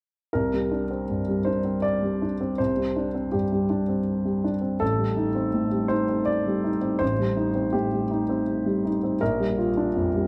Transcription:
upright piano
0.33 C2 A#4
0.54 G3
0.71 D4
0.90 C4
1.10 G2
1.28 G3
1.45 D4 C5
1.65 C4
1.82 D5
2.03 G3
2.22 D4
2.41 C4
2.58 C2 C5
2.77 G3
2.96 D4
3.15 C4
3.32 G2 G4
3.52 G3
3.70 D4
3.88 C4
4.25 G3
4.44 D4
4.61 C4
4.80 A1 A4
4.99 G3
5.17 D#4
5.35 C4
5.54 A2
5.71 G3
5.88 D#4 C5
6.08 C4
6.25 D5
6.46 G3
6.64 D#4
6.82 C4
6.99 A1 C5
7.19 G3
7.37 D#4
7.55 C4
7.73 A2 G4
7.93 G3
8.11 D#4
8.29 C4
8.66 G3
8.85 D#4
9.03 C4
9.21 A#1 A#4
9.40 G3
9.58 F4
9.77 D4
9.96 F2
10.15 G3

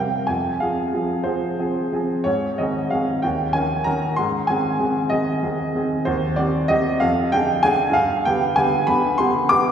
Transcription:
upright piano
Already playing: C2 G3 C4 A#4 E5 F5 G5
0.27 F2 G#5
0.60 F3 C4 G#4 F5
0.93 F3 C4 G#4
1.24 F3 C4 G#4 C5
1.59 F3 C4 G#4
1.92 F3 C4 G#4
2.24 G#2 C#5
2.58 D#3 C4 G#4 D#5
2.90 D#3 C4 G#4 F5
3.22 D#2 G5
3.53 D#3 C#4 A#4 G#5
3.84 D#3 C#4 A#4 A#5
4.16 G#2 C6
4.47 D#3 C4 G#4 G#5
4.79 D#3 C4 G#4
5.10 D#3 C4 G#4 D#5
5.43 D#3 C4 G#4
5.75 D#3 C4 G#4
6.05 D#2 C5
6.36 D#3 C4 G4 D5
6.68 D#3 C4 G4 D#5
7.00 F2 F5
7.32 D3 D4 G#4 G5
7.63 D3 D4 G#4 G#5
7.90 G2 F5
8.25 D3 B3 G4 G5
8.56 D3 B3 G4 G#5
8.87 D3 B3 G4 B5
9.18 D3 B3 G4 C6
9.49 D3 B3 G4 D6

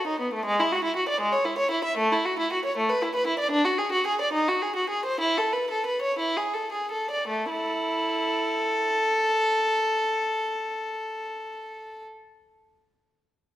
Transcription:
violin
0.07 D#4
0.20 B3
0.34 A3
0.45 G#3
0.60 E4
0.72 F#4
0.84 E4
0.96 F#4
1.09 D5
1.21 G#3
1.32 C#5
1.45 E4
1.58 C#5
1.71 E4
1.85 E5
1.98 A3
2.12 E4
2.25 F#4
2.39 E4
2.53 F#4
2.65 C#5
2.77 A3
2.89 B4
3.02 E4
3.15 B4
3.27 E4
3.39 D5
3.51 D4
3.65 F#4
3.78 G#4
3.92 F#4
4.07 G#4
4.21 D5
4.33 D#4
4.49 F#4
4.62 G#4
4.76 F#4
4.90 G#4
5.05 C5
5.21 E4
5.38 A4
5.53 B4
5.71 A4
5.86 B4
6.02 C#5
6.19 E4
6.37 G#4
6.54 A4
6.72 G#4
6.91 A4
7.11 D5
7.28 A3
7.50 E4 A4

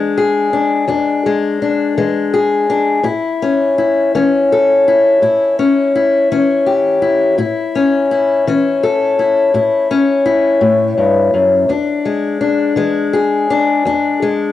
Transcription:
steel-string acoustic guitar
Already playing: E3 G#3 D4
0.17 G#4
0.53 D4
0.88 E2 D4
1.26 G#3
1.62 D4
1.98 E3 G#3
2.34 G#4
2.70 D4
3.03 A2 E4
3.42 C#4
3.78 E4
4.15 E3 C#4
4.52 A4
4.88 E4
5.22 A2 E4
5.59 C#4
5.96 E4
6.32 E3 C#4
6.66 G4
7.02 E4
7.38 A2 E4
7.75 C#4
8.11 E4
8.47 E3 C#4
8.83 A4
9.19 E4
9.54 A2 E4
9.91 C#4
10.26 E4
10.61 A2
10.98 G2
11.34 F#2
11.69 E2 D4
12.05 G#3
12.41 D4
12.76 E3 G#3
13.13 G#4
13.50 D4
13.85 E2 D4
14.22 G#3

